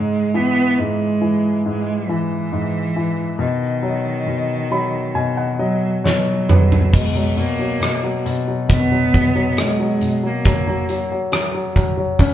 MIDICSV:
0, 0, Header, 1, 4, 480
1, 0, Start_track
1, 0, Tempo, 870827
1, 1871, Time_signature, 4, 2, 24, 8
1, 1871, Tempo, 884956
1, 4751, Tempo, 873362
1, 6748, End_track
2, 0, Start_track
2, 0, Title_t, "Cello"
2, 0, Program_c, 0, 42
2, 0, Note_on_c, 0, 56, 84
2, 196, Note_on_c, 0, 59, 86
2, 204, Note_off_c, 0, 56, 0
2, 436, Note_on_c, 0, 56, 81
2, 445, Note_off_c, 0, 59, 0
2, 914, Note_off_c, 0, 56, 0
2, 919, Note_on_c, 0, 56, 88
2, 1158, Note_on_c, 0, 52, 75
2, 1166, Note_off_c, 0, 56, 0
2, 1871, Note_off_c, 0, 52, 0
2, 1875, Note_on_c, 0, 51, 64
2, 3046, Note_off_c, 0, 51, 0
2, 3079, Note_on_c, 0, 54, 53
2, 3299, Note_off_c, 0, 54, 0
2, 3323, Note_on_c, 0, 54, 73
2, 3801, Note_on_c, 0, 56, 72
2, 3809, Note_off_c, 0, 54, 0
2, 4040, Note_on_c, 0, 58, 77
2, 4049, Note_off_c, 0, 56, 0
2, 4515, Note_off_c, 0, 58, 0
2, 4754, Note_on_c, 0, 59, 89
2, 5240, Note_on_c, 0, 56, 83
2, 5248, Note_off_c, 0, 59, 0
2, 5611, Note_on_c, 0, 58, 71
2, 5619, Note_off_c, 0, 56, 0
2, 6083, Note_off_c, 0, 58, 0
2, 6748, End_track
3, 0, Start_track
3, 0, Title_t, "Grand piano"
3, 0, Program_c, 1, 0
3, 0, Note_on_c, 1, 44, 53
3, 57, Control_c, 1, 64, 127
3, 189, Note_on_c, 1, 52, 45
3, 425, Note_off_c, 1, 44, 0
3, 433, Note_on_c, 1, 44, 48
3, 661, Note_off_c, 1, 52, 0
3, 669, Note_on_c, 1, 52, 46
3, 905, Note_off_c, 1, 44, 0
3, 913, Note_on_c, 1, 44, 47
3, 1145, Note_off_c, 1, 52, 0
3, 1154, Note_on_c, 1, 52, 46
3, 1382, Note_off_c, 1, 44, 0
3, 1391, Note_on_c, 1, 44, 46
3, 1624, Note_off_c, 1, 52, 0
3, 1633, Note_on_c, 1, 52, 41
3, 1857, Note_off_c, 1, 44, 0
3, 1865, Note_off_c, 1, 52, 0
3, 1867, Note_on_c, 1, 47, 56
3, 1879, Control_c, 1, 64, 0
3, 1985, Control_c, 1, 64, 127
3, 2106, Note_on_c, 1, 54, 44
3, 2335, Note_off_c, 1, 47, 0
3, 2344, Note_on_c, 1, 47, 43
3, 2578, Note_off_c, 1, 54, 0
3, 2587, Note_on_c, 1, 54, 41
3, 2588, Note_on_c, 1, 83, 50
3, 2810, Note_off_c, 1, 83, 0
3, 2814, Note_off_c, 1, 47, 0
3, 2822, Note_on_c, 1, 47, 43
3, 2823, Note_on_c, 1, 80, 57
3, 2936, Note_off_c, 1, 80, 0
3, 2944, Note_on_c, 1, 78, 49
3, 3055, Note_off_c, 1, 54, 0
3, 3057, Note_off_c, 1, 78, 0
3, 3063, Note_on_c, 1, 54, 39
3, 3064, Note_on_c, 1, 75, 56
3, 3291, Note_off_c, 1, 75, 0
3, 3300, Note_off_c, 1, 47, 0
3, 3308, Note_on_c, 1, 73, 52
3, 3309, Note_on_c, 1, 47, 44
3, 3534, Note_off_c, 1, 73, 0
3, 3542, Note_off_c, 1, 54, 0
3, 3548, Note_on_c, 1, 71, 49
3, 3551, Note_on_c, 1, 54, 34
3, 3774, Note_off_c, 1, 71, 0
3, 3778, Note_off_c, 1, 47, 0
3, 3785, Note_off_c, 1, 54, 0
3, 3787, Note_on_c, 1, 47, 46
3, 3798, Control_c, 1, 64, 0
3, 3883, Control_c, 1, 64, 127
3, 3912, Note_on_c, 1, 54, 41
3, 4020, Note_off_c, 1, 47, 0
3, 4028, Note_on_c, 1, 47, 44
3, 4140, Note_off_c, 1, 54, 0
3, 4148, Note_on_c, 1, 54, 37
3, 4254, Note_off_c, 1, 47, 0
3, 4262, Note_on_c, 1, 47, 46
3, 4380, Note_off_c, 1, 54, 0
3, 4388, Note_on_c, 1, 54, 41
3, 4499, Note_off_c, 1, 47, 0
3, 4507, Note_on_c, 1, 47, 46
3, 4620, Note_off_c, 1, 54, 0
3, 4628, Note_on_c, 1, 54, 41
3, 4734, Note_off_c, 1, 47, 0
3, 4742, Note_on_c, 1, 47, 57
3, 4859, Note_off_c, 1, 54, 0
3, 4868, Note_on_c, 1, 54, 36
3, 4975, Note_off_c, 1, 47, 0
3, 4984, Note_on_c, 1, 47, 44
3, 5101, Note_off_c, 1, 54, 0
3, 5109, Note_on_c, 1, 54, 40
3, 5221, Note_off_c, 1, 47, 0
3, 5230, Note_on_c, 1, 47, 45
3, 5345, Note_off_c, 1, 54, 0
3, 5353, Note_on_c, 1, 54, 42
3, 5464, Note_off_c, 1, 47, 0
3, 5472, Note_on_c, 1, 47, 40
3, 5583, Note_off_c, 1, 54, 0
3, 5591, Note_on_c, 1, 54, 42
3, 5706, Note_off_c, 1, 54, 0
3, 5707, Note_off_c, 1, 47, 0
3, 5714, Note_on_c, 1, 54, 55
3, 5722, Control_c, 1, 64, 0
3, 5817, Control_c, 1, 64, 127
3, 5825, Note_off_c, 1, 54, 0
3, 5834, Note_on_c, 1, 54, 49
3, 5948, Note_off_c, 1, 54, 0
3, 5956, Note_on_c, 1, 54, 46
3, 6068, Note_off_c, 1, 54, 0
3, 6076, Note_on_c, 1, 54, 40
3, 6181, Note_off_c, 1, 54, 0
3, 6189, Note_on_c, 1, 54, 44
3, 6304, Note_off_c, 1, 54, 0
3, 6312, Note_on_c, 1, 54, 49
3, 6420, Note_off_c, 1, 54, 0
3, 6428, Note_on_c, 1, 54, 47
3, 6540, Note_off_c, 1, 54, 0
3, 6548, Note_on_c, 1, 54, 48
3, 6672, Note_on_c, 1, 61, 58
3, 6748, Note_off_c, 1, 54, 0
3, 6748, Note_off_c, 1, 61, 0
3, 6748, End_track
4, 0, Start_track
4, 0, Title_t, "Drums"
4, 3314, Note_on_c, 9, 38, 48
4, 3368, Note_off_c, 9, 38, 0
4, 3552, Note_on_c, 9, 45, 70
4, 3607, Note_off_c, 9, 45, 0
4, 3675, Note_on_c, 9, 43, 68
4, 3729, Note_off_c, 9, 43, 0
4, 3791, Note_on_c, 9, 36, 86
4, 3792, Note_on_c, 9, 49, 69
4, 3846, Note_off_c, 9, 36, 0
4, 3846, Note_off_c, 9, 49, 0
4, 4031, Note_on_c, 9, 42, 51
4, 4086, Note_off_c, 9, 42, 0
4, 4270, Note_on_c, 9, 42, 70
4, 4276, Note_on_c, 9, 37, 79
4, 4324, Note_off_c, 9, 42, 0
4, 4330, Note_off_c, 9, 37, 0
4, 4510, Note_on_c, 9, 42, 54
4, 4564, Note_off_c, 9, 42, 0
4, 4747, Note_on_c, 9, 36, 76
4, 4751, Note_on_c, 9, 42, 80
4, 4802, Note_off_c, 9, 36, 0
4, 4806, Note_off_c, 9, 42, 0
4, 4991, Note_on_c, 9, 42, 59
4, 4992, Note_on_c, 9, 36, 78
4, 5046, Note_off_c, 9, 42, 0
4, 5047, Note_off_c, 9, 36, 0
4, 5227, Note_on_c, 9, 42, 74
4, 5234, Note_on_c, 9, 37, 90
4, 5282, Note_off_c, 9, 42, 0
4, 5289, Note_off_c, 9, 37, 0
4, 5471, Note_on_c, 9, 42, 60
4, 5526, Note_off_c, 9, 42, 0
4, 5710, Note_on_c, 9, 42, 70
4, 5713, Note_on_c, 9, 36, 88
4, 5765, Note_off_c, 9, 42, 0
4, 5768, Note_off_c, 9, 36, 0
4, 5952, Note_on_c, 9, 42, 53
4, 6007, Note_off_c, 9, 42, 0
4, 6189, Note_on_c, 9, 42, 74
4, 6195, Note_on_c, 9, 37, 90
4, 6244, Note_off_c, 9, 42, 0
4, 6250, Note_off_c, 9, 37, 0
4, 6430, Note_on_c, 9, 36, 62
4, 6430, Note_on_c, 9, 42, 49
4, 6485, Note_off_c, 9, 36, 0
4, 6485, Note_off_c, 9, 42, 0
4, 6668, Note_on_c, 9, 36, 79
4, 6673, Note_on_c, 9, 42, 84
4, 6723, Note_off_c, 9, 36, 0
4, 6728, Note_off_c, 9, 42, 0
4, 6748, End_track
0, 0, End_of_file